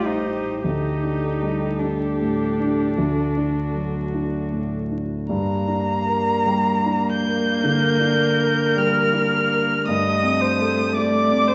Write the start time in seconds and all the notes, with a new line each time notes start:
Already playing: A1 A2 G3 D#4 G4
0.06 D#4 C5
0.26 D#4
0.63 D2 D#4 G4 A4
1.03 D4
1.43 G3
1.79 D4 G4
2.21 A2
2.59 D4
2.97 D2 F#4
3.37 D4
3.75 F#3
4.14 D4
4.52 A2
4.91 D4
5.29 G2 A#3 A#5
5.68 D4
6.07 A#4
6.46 G3
6.86 D4
7.09 G6
7.26 A#4
7.64 D3 A#4
8.00 D4
8.39 A#4
8.76 G3 F6
9.14 D4
9.51 A#4
9.88 G2 A3 D#5 D#6
10.23 C4
10.41 C5
10.61 A4
10.95 A3 D5 D6
11.32 C4
11.48 C5